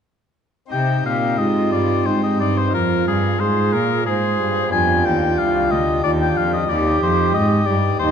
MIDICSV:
0, 0, Header, 1, 5, 480
1, 0, Start_track
1, 0, Key_signature, -3, "minor"
1, 0, Tempo, 669643
1, 518, Time_signature, 3, 2, 24, 8
1, 2438, Tempo, 657174
1, 5879, End_track
2, 0, Start_track
2, 0, Title_t, "Oboe"
2, 0, Program_c, 0, 68
2, 513, Note_on_c, 0, 79, 75
2, 739, Note_off_c, 0, 79, 0
2, 759, Note_on_c, 0, 77, 69
2, 987, Note_on_c, 0, 75, 72
2, 998, Note_off_c, 0, 77, 0
2, 1227, Note_off_c, 0, 75, 0
2, 1232, Note_on_c, 0, 74, 68
2, 1474, Note_on_c, 0, 72, 67
2, 1485, Note_off_c, 0, 74, 0
2, 1594, Note_off_c, 0, 72, 0
2, 1600, Note_on_c, 0, 75, 66
2, 1715, Note_off_c, 0, 75, 0
2, 1721, Note_on_c, 0, 74, 73
2, 1843, Note_on_c, 0, 72, 66
2, 1854, Note_off_c, 0, 74, 0
2, 1960, Note_off_c, 0, 72, 0
2, 1965, Note_on_c, 0, 70, 71
2, 2196, Note_off_c, 0, 70, 0
2, 2204, Note_on_c, 0, 68, 70
2, 2436, Note_on_c, 0, 72, 72
2, 2447, Note_off_c, 0, 68, 0
2, 2680, Note_on_c, 0, 70, 74
2, 2691, Note_off_c, 0, 72, 0
2, 2916, Note_off_c, 0, 70, 0
2, 2920, Note_on_c, 0, 68, 71
2, 3392, Note_off_c, 0, 68, 0
2, 3400, Note_on_c, 0, 80, 89
2, 3644, Note_on_c, 0, 79, 72
2, 3655, Note_off_c, 0, 80, 0
2, 3886, Note_on_c, 0, 77, 82
2, 3897, Note_off_c, 0, 79, 0
2, 4125, Note_on_c, 0, 75, 74
2, 4136, Note_off_c, 0, 77, 0
2, 4358, Note_off_c, 0, 75, 0
2, 4362, Note_on_c, 0, 74, 73
2, 4416, Note_off_c, 0, 74, 0
2, 4489, Note_on_c, 0, 79, 75
2, 4606, Note_on_c, 0, 77, 83
2, 4617, Note_off_c, 0, 79, 0
2, 4719, Note_off_c, 0, 77, 0
2, 4724, Note_on_c, 0, 75, 77
2, 4841, Note_on_c, 0, 74, 87
2, 4852, Note_off_c, 0, 75, 0
2, 5080, Note_off_c, 0, 74, 0
2, 5085, Note_on_c, 0, 72, 75
2, 5311, Note_off_c, 0, 72, 0
2, 5316, Note_on_c, 0, 75, 89
2, 5551, Note_on_c, 0, 74, 80
2, 5562, Note_off_c, 0, 75, 0
2, 5786, Note_off_c, 0, 74, 0
2, 5790, Note_on_c, 0, 72, 91
2, 5879, Note_off_c, 0, 72, 0
2, 5879, End_track
3, 0, Start_track
3, 0, Title_t, "Flute"
3, 0, Program_c, 1, 73
3, 996, Note_on_c, 1, 65, 59
3, 1481, Note_on_c, 1, 63, 49
3, 1491, Note_off_c, 1, 65, 0
3, 1965, Note_on_c, 1, 65, 59
3, 1976, Note_off_c, 1, 63, 0
3, 2439, Note_on_c, 1, 68, 59
3, 2450, Note_off_c, 1, 65, 0
3, 2921, Note_off_c, 1, 68, 0
3, 2927, Note_on_c, 1, 72, 66
3, 3396, Note_off_c, 1, 72, 0
3, 3407, Note_on_c, 1, 65, 62
3, 4348, Note_off_c, 1, 65, 0
3, 4366, Note_on_c, 1, 65, 64
3, 4840, Note_on_c, 1, 67, 71
3, 4851, Note_off_c, 1, 65, 0
3, 5595, Note_off_c, 1, 67, 0
3, 5793, Note_on_c, 1, 63, 66
3, 5879, Note_off_c, 1, 63, 0
3, 5879, End_track
4, 0, Start_track
4, 0, Title_t, "Pipe organ"
4, 0, Program_c, 2, 19
4, 482, Note_on_c, 2, 60, 39
4, 494, Note_on_c, 2, 63, 38
4, 504, Note_on_c, 2, 67, 40
4, 517, Note_on_c, 2, 48, 43
4, 733, Note_off_c, 2, 48, 0
4, 753, Note_on_c, 2, 46, 47
4, 971, Note_off_c, 2, 46, 0
4, 991, Note_on_c, 2, 44, 48
4, 1209, Note_off_c, 2, 44, 0
4, 1236, Note_on_c, 2, 43, 47
4, 1451, Note_off_c, 2, 43, 0
4, 1470, Note_on_c, 2, 44, 46
4, 1688, Note_off_c, 2, 44, 0
4, 1711, Note_on_c, 2, 43, 44
4, 1907, Note_off_c, 2, 60, 0
4, 1915, Note_off_c, 2, 63, 0
4, 1920, Note_off_c, 2, 67, 0
4, 1921, Note_on_c, 2, 60, 42
4, 1929, Note_off_c, 2, 43, 0
4, 1932, Note_on_c, 2, 65, 43
4, 1957, Note_on_c, 2, 41, 45
4, 2172, Note_off_c, 2, 60, 0
4, 2173, Note_off_c, 2, 41, 0
4, 2194, Note_on_c, 2, 43, 49
4, 2411, Note_off_c, 2, 43, 0
4, 2434, Note_on_c, 2, 44, 48
4, 2653, Note_off_c, 2, 44, 0
4, 2674, Note_on_c, 2, 46, 47
4, 2893, Note_off_c, 2, 46, 0
4, 2917, Note_on_c, 2, 44, 46
4, 3135, Note_off_c, 2, 44, 0
4, 3160, Note_on_c, 2, 43, 50
4, 3360, Note_off_c, 2, 65, 0
4, 3367, Note_on_c, 2, 59, 44
4, 3377, Note_off_c, 2, 43, 0
4, 3380, Note_on_c, 2, 62, 43
4, 3389, Note_on_c, 2, 67, 44
4, 3401, Note_on_c, 2, 41, 46
4, 3619, Note_off_c, 2, 41, 0
4, 3619, Note_off_c, 2, 59, 0
4, 3636, Note_on_c, 2, 39, 52
4, 3857, Note_off_c, 2, 39, 0
4, 3884, Note_on_c, 2, 36, 51
4, 4101, Note_off_c, 2, 36, 0
4, 4115, Note_on_c, 2, 38, 47
4, 4335, Note_off_c, 2, 38, 0
4, 4356, Note_on_c, 2, 39, 50
4, 4575, Note_off_c, 2, 39, 0
4, 4596, Note_on_c, 2, 41, 54
4, 4803, Note_off_c, 2, 62, 0
4, 4808, Note_off_c, 2, 67, 0
4, 4815, Note_off_c, 2, 41, 0
4, 4821, Note_on_c, 2, 63, 45
4, 4835, Note_on_c, 2, 67, 45
4, 4844, Note_on_c, 2, 39, 50
4, 5060, Note_off_c, 2, 39, 0
4, 5088, Note_on_c, 2, 41, 57
4, 5300, Note_off_c, 2, 41, 0
4, 5314, Note_on_c, 2, 44, 56
4, 5531, Note_off_c, 2, 44, 0
4, 5550, Note_on_c, 2, 43, 50
4, 5768, Note_off_c, 2, 43, 0
4, 5786, Note_on_c, 2, 39, 58
4, 5879, Note_off_c, 2, 39, 0
4, 5879, Note_off_c, 2, 63, 0
4, 5879, Note_off_c, 2, 67, 0
4, 5879, End_track
5, 0, Start_track
5, 0, Title_t, "Cello"
5, 0, Program_c, 3, 42
5, 516, Note_on_c, 3, 48, 59
5, 740, Note_off_c, 3, 48, 0
5, 759, Note_on_c, 3, 46, 52
5, 995, Note_on_c, 3, 44, 54
5, 1006, Note_off_c, 3, 46, 0
5, 1232, Note_off_c, 3, 44, 0
5, 1236, Note_on_c, 3, 43, 54
5, 1471, Note_off_c, 3, 43, 0
5, 1477, Note_on_c, 3, 44, 54
5, 1720, Note_on_c, 3, 43, 54
5, 1731, Note_off_c, 3, 44, 0
5, 1957, Note_off_c, 3, 43, 0
5, 1961, Note_on_c, 3, 41, 59
5, 2194, Note_off_c, 3, 41, 0
5, 2203, Note_on_c, 3, 43, 60
5, 2435, Note_off_c, 3, 43, 0
5, 2443, Note_on_c, 3, 44, 59
5, 2685, Note_on_c, 3, 46, 53
5, 2696, Note_off_c, 3, 44, 0
5, 2927, Note_on_c, 3, 44, 51
5, 2938, Note_off_c, 3, 46, 0
5, 3161, Note_off_c, 3, 44, 0
5, 3165, Note_on_c, 3, 43, 54
5, 3399, Note_off_c, 3, 43, 0
5, 3403, Note_on_c, 3, 41, 65
5, 3648, Note_on_c, 3, 39, 61
5, 3659, Note_off_c, 3, 41, 0
5, 3882, Note_off_c, 3, 39, 0
5, 3886, Note_on_c, 3, 36, 62
5, 4126, Note_on_c, 3, 38, 60
5, 4137, Note_off_c, 3, 36, 0
5, 4362, Note_off_c, 3, 38, 0
5, 4366, Note_on_c, 3, 39, 57
5, 4599, Note_off_c, 3, 39, 0
5, 4604, Note_on_c, 3, 41, 61
5, 4839, Note_off_c, 3, 41, 0
5, 4845, Note_on_c, 3, 39, 68
5, 5078, Note_off_c, 3, 39, 0
5, 5082, Note_on_c, 3, 41, 67
5, 5316, Note_off_c, 3, 41, 0
5, 5322, Note_on_c, 3, 44, 69
5, 5552, Note_off_c, 3, 44, 0
5, 5557, Note_on_c, 3, 43, 62
5, 5791, Note_off_c, 3, 43, 0
5, 5797, Note_on_c, 3, 39, 62
5, 5879, Note_off_c, 3, 39, 0
5, 5879, End_track
0, 0, End_of_file